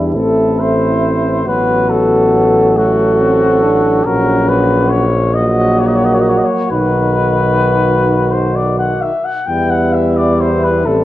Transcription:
Already playing: E2 G3 D4 E4
0.14 A1 A3 C4 E4 A4
0.60 C5
1.46 A1 F#3 B3 F#4 B4
1.89 A4
2.77 A3 F#4 A4
3.20 C4
3.63 D4
4.05 A#1 F#3 C#4 F#4 A#4
4.48 B4
4.89 C#5
5.34 F#3 A#3 F#4 D#5
5.79 C#5
5.87 D#5
5.95 C#5
6.05 D#5
6.14 C#5
6.20 D#5
6.29 C#5
6.38 D#5
6.45 C#5
6.71 B1 D#3 D#4 F#4 B4
8.31 C5
8.55 D5
8.78 F#5
9.01 E5
9.24 F#5
9.46 E2 G3 B3 E4 G5
9.70 F#5
9.93 E5
10.17 D5
10.40 C5
10.63 B4
10.85 A1 G3 C4 E4 A4

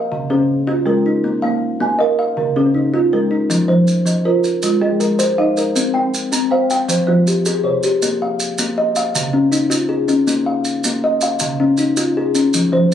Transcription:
Already playing: A#4 D#5 F5 G#5
0.12 C#3
0.30 C#3 C#4 G#4
0.67 F4
0.86 G#3 G#4 A#4
1.06 D#4
1.24 A#3
1.42 A#3 F5
1.80 A#3 G#5
1.99 A#4 D#5 F5
2.19 F5
2.37 C#3 A#4
2.56 C#3 C#4 G#4
2.74 D#4
2.94 F4
3.13 G#3 G#4 A#4
3.31 D#4
3.50 F3, maracas
3.68 F3 C5
3.88 maracas
4.06 F3 D#5, maracas
4.25 F4 A#4 C5
4.44 maracas
4.62 G#3 F4, maracas
4.81 G#3 G#4 D#5
5.00 A#4, maracas
5.19 C5, maracas
5.38 D#4 D#5 F5
5.57 A#4, maracas
5.76 C4, maracas
5.94 C4 G5
6.14 maracas
6.32 C4 A#5, maracas
6.51 C5 F5 G5
6.70 G5, maracas
6.89 F3 C5, maracas
7.07 F3 F4 C5
7.27 G4, maracas
7.45 G#4, maracas
7.64 C3 C5 C#5
7.83 G4, maracas
8.02 A#3, maracas
8.22 F5
8.40 maracas
8.58 A#3, maracas
8.78 D#5
8.96 F5, maracas
9.15 C#3, maracas
9.33 C#4
9.52 D#4, maracas
9.70 F4, maracas
9.89 G#4
10.08 C#4, maracas
10.27 A#3, maracas
10.46 F5
10.65 maracas
10.84 A#3, maracas
11.04 D#5
11.21 F5, maracas
11.39 C#3, maracas
11.60 C#4
11.77 D#4, maracas
11.97 F4, maracas
12.17 G#4
12.35 C#4, maracas
12.54 F3, maracas
12.72 F3 C5

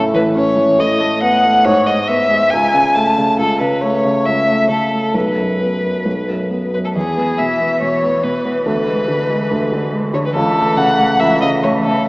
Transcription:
Already playing: A2
0.14 E3 B4
0.35 C#4 C#5
0.56 E3
0.78 A2 D#5
1.00 A3
1.22 B3 F#5
1.44 A3
1.65 G#2 C#5
1.86 G#3 D#5
2.08 B3 E5
2.31 G#3
2.50 C#2 G#5
2.74 C#3
2.95 A3 A5
3.18 C#3
3.39 C#2 A4
3.60 C#3 B4
3.81 A3 C#5
4.05 C#3
4.25 C#2 E5
4.48 A3
4.69 C#3 A4
4.91 A3
5.14 B1 B4
5.38 F#2
5.60 B3
5.83 F#2
6.05 B1
6.28 F#2
6.51 B3
6.73 F#2 B4
6.85 A4
6.95 E2 E3 G#4
7.18 B3
7.38 B2 E5
7.60 B3
7.81 B2 C#5
8.02 B3
8.23 B2 B4
8.45 B3
8.66 D2 B4
8.88 G#3
9.08 D3
9.30 G#3
9.51 D2
9.72 D3
9.93 G#3
10.14 D3 C#5
10.25 B4
10.34 C#2 E3 A4
10.58 A3
10.77 C#3 F#5
10.99 A3
11.20 C#2 E3 E5
11.41 C#3 D#5
11.63 E3 A3 C#5
11.85 C#3 A4

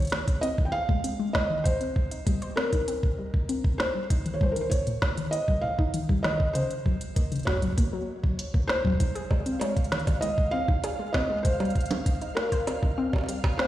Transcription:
Already playing: C#5
0.02 closed hi-hat
0.05 closed hi-hat
0.07 closed hi-hat
0.10 G#3, snare, closed hi-hat
0.28 kick, closed hi-hat
0.41 C4 D#5, closed hi-hat
0.58 D#3, kick
0.65 G5
0.72 G#4 F5
0.89 G#3, kick
1.04 C4, closed hi-hat
1.19 G#3
1.33 D#5, kick, snare
1.50 D#3
1.64 C5, kick, closed hi-hat
1.81 C4, closed hi-hat
1.96 kick
2.11 D#4, closed hi-hat
2.27 G3, kick, closed hi-hat
2.42 C5, closed hi-hat
2.56 C4 A#4, snare
2.73 D#4, kick, closed hi-hat
2.88 C4, closed hi-hat
3.03 kick
3.19 G3
3.34 kick
3.49 C4, closed hi-hat
3.64 kick
3.78 D#4 C5, snare
3.95 G3
4.10 D#4, kick, closed hi-hat
4.26 D#3, closed hi-hat
4.34 C#5
4.41 G3 C5, kick
4.52 A#4
4.56 D#3, closed hi-hat
4.61 C5
4.70 C#5, kick, closed hi-hat
4.87 A#2, closed hi-hat
5.02 kick, snare
5.17 D#3, closed hi-hat
5.31 D#5, closed hi-hat
5.48 G3, kick
5.61 A#2 F5
5.79 D#4, kick
5.94 D#3, closed hi-hat
6.09 G3, kick
6.23 D#3 D#5, snare
6.40 kick
6.53 C#3 C5, closed hi-hat
6.71 closed hi-hat
6.86 F#3, kick
7.01 closed hi-hat
7.16 A#3, kick, closed hi-hat
7.32 C#3, closed hi-hat
7.36 closed hi-hat
7.39 closed hi-hat
7.43 F#4 C#5, kick, snare, closed hi-hat
7.52 kick
7.57 kick
7.62 F#3, kick, closed hi-hat
7.67 kick
7.72 kick
7.78 A#3, kick, closed hi-hat
7.93 F#3
8.23 F#3, kick
8.39 closed hi-hat
8.54 A#3, kick
8.68 C5, snare
8.85 F#3, kick
8.87 kick
8.90 kick
8.92 kick
8.95 kick
8.97 F5, kick
9.00 D#4, kick, closed hi-hat
9.15 G#4, closed hi-hat
9.31 G#3, kick, high bongo
9.46 C4, closed hi-hat
9.60 G#3 C#5, closed hi-hat, high bongo
9.77 kick, closed hi-hat
9.84 closed hi-hat
9.92 D#3, snare, closed hi-hat
9.99 closed hi-hat
10.07 kick, closed hi-hat, high bongo
10.21 G#3 D#5, closed hi-hat
10.38 kick
10.51 C4 F5
10.68 D#4, kick
10.84 G#4, closed hi-hat, high bongo
10.99 G#3
11.13 C4 D#5, kick, snare, high bongo
11.30 G#3
11.43 C5, kick, closed hi-hat
11.60 G3, closed hi-hat, high bongo
11.65 closed hi-hat
11.70 closed hi-hat
11.75 kick, closed hi-hat
11.81 closed hi-hat
11.86 closed hi-hat
11.91 C4, closed hi-hat, high bongo
12.06 kick, closed hi-hat
12.21 D#4, closed hi-hat
12.35 G4 A#4, snare, high bongo
12.52 C5, kick, closed hi-hat
12.67 C4, closed hi-hat, high bongo
12.83 D#4, kick
12.98 C4
13.13 kick, high bongo
13.16 high bongo
13.18 high bongo
13.21 high bongo
13.24 high bongo
13.26 G3, closed hi-hat, high bongo
13.44 kick, high bongo
13.58 C4 C5, snare

